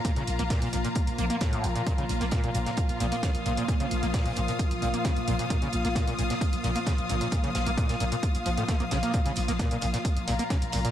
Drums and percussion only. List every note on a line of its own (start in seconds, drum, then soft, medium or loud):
0.05 kick loud
0.05 closed hi-hat medium
0.16 closed hi-hat medium
0.27 closed hi-hat medium
0.39 closed hi-hat soft
0.50 kick loud
0.50 snare loud
0.50 closed hi-hat medium
0.50 open hi-hat medium
0.62 closed hi-hat medium
0.73 closed hi-hat medium
0.84 closed hi-hat soft
0.84 closed hi-hat medium
0.95 kick loud
0.95 closed hi-hat medium
1.07 closed hi-hat soft
1.18 closed hi-hat medium
1.30 closed hi-hat soft
1.41 kick loud
1.41 snare loud
1.41 closed hi-hat medium
1.53 closed hi-hat soft
1.64 closed hi-hat medium
1.76 closed hi-hat soft
1.87 kick loud
1.87 closed hi-hat medium
1.98 closed hi-hat soft
2.09 closed hi-hat medium
2.20 snare soft
2.20 closed hi-hat soft
2.31 kick loud
2.31 snare loud
2.31 closed hi-hat medium
2.44 closed hi-hat soft
2.54 closed hi-hat medium
2.66 snare soft
2.66 closed hi-hat soft
2.77 kick loud
2.77 closed hi-hat medium
2.89 closed hi-hat soft
3.00 snare soft
3.00 closed hi-hat medium
3.12 closed hi-hat soft
3.23 kick loud
3.23 snare loud
3.23 closed hi-hat medium
3.35 closed hi-hat soft
3.46 closed hi-hat medium
3.57 closed hi-hat soft
3.68 kick loud
3.68 closed hi-hat medium
3.80 closed hi-hat soft
3.91 closed hi-hat medium
4.03 closed hi-hat soft
4.14 kick loud
4.14 snare loud
4.14 closed hi-hat medium
4.14 open hi-hat medium
4.26 closed hi-hat soft
4.36 closed hi-hat medium
4.48 closed hi-hat medium
4.48 closed hi-hat soft
4.59 kick loud
4.59 closed hi-hat medium
4.71 closed hi-hat medium
4.82 closed hi-hat medium
4.94 closed hi-hat soft
5.05 kick loud
5.05 snare loud
5.05 closed hi-hat medium
5.16 closed hi-hat soft
5.28 closed hi-hat medium
5.39 closed hi-hat soft
5.50 kick loud
5.50 closed hi-hat medium
5.62 closed hi-hat medium
5.73 closed hi-hat medium
5.85 snare soft
5.85 closed hi-hat soft
5.95 kick loud
5.95 snare loud
5.95 closed hi-hat medium
6.07 closed hi-hat soft
6.19 closed hi-hat medium
6.30 snare medium
6.30 closed hi-hat medium
6.41 kick loud
6.41 closed hi-hat medium
6.53 closed hi-hat medium
6.64 snare soft
6.64 closed hi-hat medium
6.75 closed hi-hat soft
6.75 closed hi-hat medium
6.86 kick loud
6.86 snare loud
6.86 closed hi-hat medium
6.98 closed hi-hat soft
7.09 closed hi-hat medium
7.21 closed hi-hat soft
7.32 kick loud
7.32 closed hi-hat medium
7.44 closed hi-hat medium
7.55 snare loud
7.55 closed hi-hat medium
7.66 closed hi-hat soft
7.78 kick loud
7.78 closed hi-hat medium
7.89 snare medium
7.89 closed hi-hat medium
8.00 closed hi-hat medium
8.12 closed hi-hat medium
8.23 kick loud
8.23 closed hi-hat medium
8.35 closed hi-hat medium
8.46 closed hi-hat medium
8.57 closed hi-hat medium
8.68 kick loud
8.68 snare loud
8.68 closed hi-hat medium
8.80 closed hi-hat soft
8.91 snare loud
8.91 closed hi-hat medium
9.03 closed hi-hat medium
9.14 kick loud
9.14 closed hi-hat medium
9.26 closed hi-hat medium
9.36 closed hi-hat medium
9.36 open hi-hat loud
9.48 snare soft
9.48 closed hi-hat medium
9.59 kick loud
9.59 snare loud
9.59 closed hi-hat medium
9.71 closed hi-hat medium
9.81 closed hi-hat medium
9.81 open hi-hat loud
9.93 snare soft
9.93 closed hi-hat medium
10.05 kick loud
10.05 closed hi-hat medium
10.17 closed hi-hat medium
10.28 snare soft
10.28 closed hi-hat medium
10.28 open hi-hat loud
10.39 closed hi-hat soft
10.39 closed hi-hat medium
10.50 kick loud
10.50 snare loud
10.50 closed hi-hat medium
10.62 closed hi-hat medium
10.72 closed hi-hat medium
10.72 open hi-hat loud
10.85 closed hi-hat medium